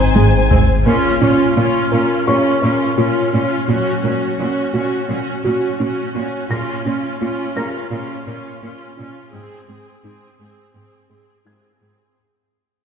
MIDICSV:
0, 0, Header, 1, 11, 480
1, 0, Start_track
1, 0, Key_signature, -5, "minor"
1, 0, Tempo, 705882
1, 583, Time_signature, 4, 2, 24, 8
1, 8732, End_track
2, 0, Start_track
2, 0, Title_t, "Felt piano"
2, 0, Program_c, 0, 0
2, 0, Control_c, 0, 64, 127
2, 0, Note_on_c, 0, 84, 40
2, 558, Note_off_c, 0, 84, 0
2, 595, Control_c, 0, 64, 0
2, 718, Control_c, 0, 64, 127
2, 1544, Note_on_c, 0, 73, 30
2, 1545, Note_on_c, 0, 85, 45
2, 2515, Control_c, 0, 64, 0
2, 2607, Control_c, 0, 64, 127
2, 2956, Note_off_c, 0, 73, 0
2, 2957, Note_off_c, 0, 85, 0
2, 4424, Note_on_c, 0, 94, 38
2, 4436, Control_c, 0, 64, 0
2, 4546, Control_c, 0, 64, 127
2, 5135, Note_off_c, 0, 94, 0
2, 5145, Note_on_c, 0, 94, 41
2, 5146, Note_on_c, 0, 82, 32
2, 6354, Control_c, 0, 64, 0
2, 6476, Control_c, 0, 64, 127
2, 6557, Note_off_c, 0, 82, 0
2, 6557, Note_off_c, 0, 94, 0
2, 7797, Note_on_c, 0, 92, 34
2, 8243, Note_off_c, 0, 92, 0
2, 8276, Control_c, 0, 64, 0
2, 8732, End_track
3, 0, Start_track
3, 0, Title_t, "Violin section"
3, 0, Program_c, 1, 48
3, 0, Note_on_c, 1, 80, 44
3, 421, Note_off_c, 1, 80, 0
3, 8732, End_track
4, 0, Start_track
4, 0, Title_t, "Violin section"
4, 0, Program_c, 2, 48
4, 0, Note_on_c, 2, 72, 54
4, 449, Note_off_c, 2, 72, 0
4, 8732, End_track
5, 0, Start_track
5, 0, Title_t, "French horn section"
5, 0, Program_c, 3, 60
5, 0, Note_on_c, 3, 60, 51
5, 0, Note_on_c, 3, 63, 53
5, 338, Note_off_c, 3, 60, 0
5, 338, Note_off_c, 3, 63, 0
5, 8732, End_track
6, 0, Start_track
6, 0, Title_t, "Synth pluck"
6, 0, Program_c, 4, 84
6, 106, Note_on_c, 4, 68, 52
6, 249, Note_off_c, 4, 68, 0
6, 344, Note_on_c, 4, 68, 51
6, 488, Note_off_c, 4, 68, 0
6, 586, Note_on_c, 4, 58, 78
6, 729, Note_off_c, 4, 58, 0
6, 825, Note_on_c, 4, 61, 58
6, 968, Note_off_c, 4, 61, 0
6, 1067, Note_on_c, 4, 65, 50
6, 1210, Note_off_c, 4, 65, 0
6, 1304, Note_on_c, 4, 70, 52
6, 1448, Note_off_c, 4, 70, 0
6, 1542, Note_on_c, 4, 58, 71
6, 1686, Note_off_c, 4, 58, 0
6, 1783, Note_on_c, 4, 70, 52
6, 1927, Note_off_c, 4, 70, 0
6, 2024, Note_on_c, 4, 65, 52
6, 2168, Note_off_c, 4, 65, 0
6, 2263, Note_on_c, 4, 61, 49
6, 2407, Note_off_c, 4, 61, 0
6, 2504, Note_on_c, 4, 54, 73
6, 2648, Note_off_c, 4, 54, 0
6, 2741, Note_on_c, 4, 58, 51
6, 2886, Note_off_c, 4, 58, 0
6, 2984, Note_on_c, 4, 61, 50
6, 3128, Note_off_c, 4, 61, 0
6, 3221, Note_on_c, 4, 66, 47
6, 3365, Note_off_c, 4, 66, 0
6, 3462, Note_on_c, 4, 54, 68
6, 3607, Note_off_c, 4, 54, 0
6, 3703, Note_on_c, 4, 66, 47
6, 3847, Note_off_c, 4, 66, 0
6, 3943, Note_on_c, 4, 61, 51
6, 4087, Note_off_c, 4, 61, 0
6, 4181, Note_on_c, 4, 58, 54
6, 4325, Note_off_c, 4, 58, 0
6, 4424, Note_on_c, 4, 58, 73
6, 4568, Note_off_c, 4, 58, 0
6, 4664, Note_on_c, 4, 61, 54
6, 4808, Note_off_c, 4, 61, 0
6, 4905, Note_on_c, 4, 65, 51
6, 5049, Note_off_c, 4, 65, 0
6, 5146, Note_on_c, 4, 70, 50
6, 5289, Note_off_c, 4, 70, 0
6, 5389, Note_on_c, 4, 58, 78
6, 5531, Note_off_c, 4, 58, 0
6, 5626, Note_on_c, 4, 70, 47
6, 5769, Note_off_c, 4, 70, 0
6, 5867, Note_on_c, 4, 65, 47
6, 6009, Note_off_c, 4, 65, 0
6, 6102, Note_on_c, 4, 61, 48
6, 6246, Note_off_c, 4, 61, 0
6, 6344, Note_on_c, 4, 56, 72
6, 6488, Note_off_c, 4, 56, 0
6, 6587, Note_on_c, 4, 60, 52
6, 6730, Note_off_c, 4, 60, 0
6, 6829, Note_on_c, 4, 63, 53
6, 6971, Note_off_c, 4, 63, 0
6, 7067, Note_on_c, 4, 68, 49
6, 7210, Note_off_c, 4, 68, 0
6, 7304, Note_on_c, 4, 56, 70
6, 7448, Note_off_c, 4, 56, 0
6, 7546, Note_on_c, 4, 68, 50
6, 7689, Note_off_c, 4, 68, 0
6, 7787, Note_on_c, 4, 63, 45
6, 7930, Note_off_c, 4, 63, 0
6, 8028, Note_on_c, 4, 60, 43
6, 8170, Note_off_c, 4, 60, 0
6, 8732, End_track
7, 0, Start_track
7, 0, Title_t, "Viola section"
7, 0, Program_c, 5, 48
7, 107, Note_on_c, 5, 56, 34
7, 161, Note_off_c, 5, 56, 0
7, 346, Note_on_c, 5, 60, 35
7, 400, Note_off_c, 5, 60, 0
7, 582, Note_on_c, 5, 61, 47
7, 584, Note_on_c, 5, 65, 44
7, 818, Note_off_c, 5, 61, 0
7, 818, Note_off_c, 5, 65, 0
7, 825, Note_on_c, 5, 61, 40
7, 827, Note_on_c, 5, 65, 38
7, 1055, Note_off_c, 5, 61, 0
7, 1056, Note_off_c, 5, 65, 0
7, 1064, Note_on_c, 5, 61, 43
7, 1064, Note_on_c, 5, 65, 45
7, 1298, Note_off_c, 5, 61, 0
7, 1299, Note_off_c, 5, 65, 0
7, 1307, Note_on_c, 5, 65, 38
7, 1309, Note_on_c, 5, 61, 39
7, 1539, Note_off_c, 5, 61, 0
7, 1540, Note_off_c, 5, 65, 0
7, 1547, Note_on_c, 5, 61, 43
7, 1547, Note_on_c, 5, 65, 39
7, 1780, Note_off_c, 5, 61, 0
7, 1780, Note_off_c, 5, 65, 0
7, 1788, Note_on_c, 5, 65, 36
7, 1790, Note_on_c, 5, 61, 38
7, 2021, Note_off_c, 5, 65, 0
7, 2022, Note_off_c, 5, 61, 0
7, 2029, Note_on_c, 5, 61, 42
7, 2029, Note_on_c, 5, 65, 39
7, 2260, Note_off_c, 5, 65, 0
7, 2261, Note_off_c, 5, 61, 0
7, 2268, Note_on_c, 5, 61, 41
7, 2268, Note_on_c, 5, 65, 40
7, 2500, Note_off_c, 5, 65, 0
7, 2501, Note_off_c, 5, 61, 0
7, 2511, Note_on_c, 5, 61, 45
7, 2511, Note_on_c, 5, 66, 49
7, 2738, Note_off_c, 5, 66, 0
7, 2739, Note_off_c, 5, 61, 0
7, 2746, Note_on_c, 5, 66, 37
7, 2747, Note_on_c, 5, 61, 38
7, 2980, Note_off_c, 5, 61, 0
7, 2980, Note_off_c, 5, 66, 0
7, 2990, Note_on_c, 5, 61, 44
7, 2991, Note_on_c, 5, 66, 43
7, 3222, Note_off_c, 5, 61, 0
7, 3222, Note_off_c, 5, 66, 0
7, 3229, Note_on_c, 5, 61, 41
7, 3230, Note_on_c, 5, 66, 45
7, 3461, Note_off_c, 5, 61, 0
7, 3462, Note_off_c, 5, 66, 0
7, 3469, Note_on_c, 5, 61, 41
7, 3469, Note_on_c, 5, 66, 41
7, 3701, Note_off_c, 5, 61, 0
7, 3701, Note_off_c, 5, 66, 0
7, 3708, Note_on_c, 5, 61, 40
7, 3709, Note_on_c, 5, 66, 40
7, 3937, Note_off_c, 5, 66, 0
7, 3938, Note_off_c, 5, 61, 0
7, 3945, Note_on_c, 5, 66, 45
7, 3946, Note_on_c, 5, 61, 46
7, 4179, Note_off_c, 5, 66, 0
7, 4180, Note_off_c, 5, 61, 0
7, 4190, Note_on_c, 5, 61, 41
7, 4191, Note_on_c, 5, 66, 43
7, 4419, Note_off_c, 5, 61, 0
7, 4422, Note_off_c, 5, 66, 0
7, 4425, Note_on_c, 5, 65, 48
7, 4427, Note_on_c, 5, 61, 51
7, 4659, Note_off_c, 5, 65, 0
7, 4660, Note_off_c, 5, 61, 0
7, 4668, Note_on_c, 5, 65, 41
7, 4671, Note_on_c, 5, 61, 41
7, 4901, Note_off_c, 5, 65, 0
7, 4902, Note_off_c, 5, 61, 0
7, 4910, Note_on_c, 5, 61, 47
7, 4910, Note_on_c, 5, 65, 48
7, 5140, Note_off_c, 5, 61, 0
7, 5140, Note_off_c, 5, 65, 0
7, 5148, Note_on_c, 5, 61, 41
7, 5148, Note_on_c, 5, 65, 43
7, 5381, Note_off_c, 5, 61, 0
7, 5381, Note_off_c, 5, 65, 0
7, 5388, Note_on_c, 5, 61, 44
7, 5388, Note_on_c, 5, 65, 46
7, 5618, Note_off_c, 5, 65, 0
7, 5621, Note_off_c, 5, 61, 0
7, 5627, Note_on_c, 5, 65, 42
7, 5629, Note_on_c, 5, 61, 45
7, 5860, Note_off_c, 5, 65, 0
7, 5861, Note_off_c, 5, 61, 0
7, 5867, Note_on_c, 5, 65, 42
7, 5869, Note_on_c, 5, 61, 45
7, 6098, Note_off_c, 5, 61, 0
7, 6100, Note_off_c, 5, 65, 0
7, 6106, Note_on_c, 5, 61, 43
7, 6108, Note_on_c, 5, 65, 42
7, 6340, Note_off_c, 5, 61, 0
7, 6340, Note_off_c, 5, 65, 0
7, 6345, Note_on_c, 5, 60, 49
7, 6345, Note_on_c, 5, 68, 51
7, 6579, Note_off_c, 5, 60, 0
7, 6579, Note_off_c, 5, 68, 0
7, 6590, Note_on_c, 5, 60, 43
7, 6592, Note_on_c, 5, 68, 42
7, 6822, Note_off_c, 5, 60, 0
7, 6823, Note_off_c, 5, 68, 0
7, 6829, Note_on_c, 5, 68, 46
7, 6831, Note_on_c, 5, 60, 44
7, 7061, Note_off_c, 5, 68, 0
7, 7062, Note_off_c, 5, 60, 0
7, 7071, Note_on_c, 5, 60, 41
7, 7072, Note_on_c, 5, 68, 40
7, 7300, Note_off_c, 5, 60, 0
7, 7302, Note_off_c, 5, 68, 0
7, 7308, Note_on_c, 5, 60, 43
7, 7311, Note_on_c, 5, 68, 41
7, 7541, Note_off_c, 5, 60, 0
7, 7542, Note_off_c, 5, 68, 0
7, 7549, Note_on_c, 5, 60, 34
7, 7549, Note_on_c, 5, 68, 34
7, 7776, Note_off_c, 5, 68, 0
7, 7778, Note_off_c, 5, 60, 0
7, 7784, Note_on_c, 5, 68, 37
7, 7786, Note_on_c, 5, 60, 36
7, 8017, Note_off_c, 5, 60, 0
7, 8017, Note_off_c, 5, 68, 0
7, 8025, Note_on_c, 5, 60, 29
7, 8025, Note_on_c, 5, 68, 31
7, 8259, Note_off_c, 5, 60, 0
7, 8259, Note_off_c, 5, 68, 0
7, 8732, End_track
8, 0, Start_track
8, 0, Title_t, "Cello section"
8, 0, Program_c, 6, 48
8, 106, Note_on_c, 6, 44, 29
8, 160, Note_off_c, 6, 44, 0
8, 347, Note_on_c, 6, 44, 33
8, 402, Note_off_c, 6, 44, 0
8, 586, Note_on_c, 6, 46, 51
8, 641, Note_off_c, 6, 46, 0
8, 825, Note_on_c, 6, 46, 43
8, 879, Note_off_c, 6, 46, 0
8, 1064, Note_on_c, 6, 46, 49
8, 1119, Note_off_c, 6, 46, 0
8, 1306, Note_on_c, 6, 46, 40
8, 1361, Note_off_c, 6, 46, 0
8, 1545, Note_on_c, 6, 46, 45
8, 1599, Note_off_c, 6, 46, 0
8, 1786, Note_on_c, 6, 46, 46
8, 1841, Note_off_c, 6, 46, 0
8, 2026, Note_on_c, 6, 46, 45
8, 2081, Note_off_c, 6, 46, 0
8, 2266, Note_on_c, 6, 46, 49
8, 2321, Note_off_c, 6, 46, 0
8, 2505, Note_on_c, 6, 46, 54
8, 2559, Note_off_c, 6, 46, 0
8, 2746, Note_on_c, 6, 46, 44
8, 2800, Note_off_c, 6, 46, 0
8, 2985, Note_on_c, 6, 46, 47
8, 3039, Note_off_c, 6, 46, 0
8, 3225, Note_on_c, 6, 46, 42
8, 3279, Note_off_c, 6, 46, 0
8, 3462, Note_on_c, 6, 46, 49
8, 3516, Note_off_c, 6, 46, 0
8, 3701, Note_on_c, 6, 46, 50
8, 3756, Note_off_c, 6, 46, 0
8, 3942, Note_on_c, 6, 46, 50
8, 3997, Note_off_c, 6, 46, 0
8, 4182, Note_on_c, 6, 46, 47
8, 4237, Note_off_c, 6, 46, 0
8, 4421, Note_on_c, 6, 46, 53
8, 4476, Note_off_c, 6, 46, 0
8, 4663, Note_on_c, 6, 46, 48
8, 4718, Note_off_c, 6, 46, 0
8, 4901, Note_on_c, 6, 46, 54
8, 4955, Note_off_c, 6, 46, 0
8, 5141, Note_on_c, 6, 46, 49
8, 5195, Note_off_c, 6, 46, 0
8, 5381, Note_on_c, 6, 46, 51
8, 5435, Note_off_c, 6, 46, 0
8, 5621, Note_on_c, 6, 46, 53
8, 5676, Note_off_c, 6, 46, 0
8, 5864, Note_on_c, 6, 46, 51
8, 5918, Note_off_c, 6, 46, 0
8, 6107, Note_on_c, 6, 46, 50
8, 6162, Note_off_c, 6, 46, 0
8, 6347, Note_on_c, 6, 44, 53
8, 6401, Note_off_c, 6, 44, 0
8, 6585, Note_on_c, 6, 44, 47
8, 6639, Note_off_c, 6, 44, 0
8, 6826, Note_on_c, 6, 44, 47
8, 6880, Note_off_c, 6, 44, 0
8, 7068, Note_on_c, 6, 44, 42
8, 7122, Note_off_c, 6, 44, 0
8, 7306, Note_on_c, 6, 44, 45
8, 7361, Note_off_c, 6, 44, 0
8, 7547, Note_on_c, 6, 44, 42
8, 7602, Note_off_c, 6, 44, 0
8, 7787, Note_on_c, 6, 44, 38
8, 7841, Note_off_c, 6, 44, 0
8, 8027, Note_on_c, 6, 44, 38
8, 8081, Note_off_c, 6, 44, 0
8, 8732, End_track
9, 0, Start_track
9, 0, Title_t, "Double bass section"
9, 0, Program_c, 7, 48
9, 104, Note_on_c, 7, 32, 33
9, 158, Note_off_c, 7, 32, 0
9, 346, Note_on_c, 7, 32, 34
9, 400, Note_off_c, 7, 32, 0
9, 8732, End_track
10, 0, Start_track
10, 0, Title_t, "Sub bass"
10, 0, Program_c, 8, 38
10, 0, Note_on_c, 8, 32, 67
10, 585, Note_off_c, 8, 32, 0
10, 8732, End_track
11, 0, Start_track
11, 0, Title_t, "Taiko and cinematic ensemble drums"
11, 107, Note_on_c, 9, 48, 77
11, 175, Note_off_c, 9, 48, 0
11, 347, Note_on_c, 9, 43, 70
11, 415, Note_off_c, 9, 43, 0
11, 8732, End_track
0, 0, End_of_file